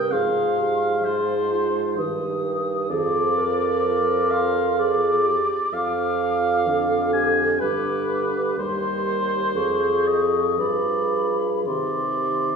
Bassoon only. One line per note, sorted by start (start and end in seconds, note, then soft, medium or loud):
0.00 0.13 G2 soft
0.12 1.99 G#2 soft
1.97 2.89 G2 soft
2.90 5.42 F2 soft
5.73 7.62 F2 soft
7.61 8.58 G2 soft
8.58 9.57 D#2 soft
9.56 10.61 F2 soft
10.59 11.66 G2 soft
11.67 12.56 C3 soft